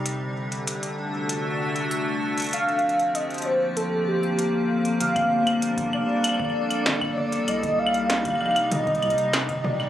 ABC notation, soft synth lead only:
X:1
M:4/4
L:1/8
Q:1/4=97
K:Gm
V:1 name="Soft synth lead"
z8 | f2 e c A G2 z | f2 z d4 d | e f2 f e3 d |]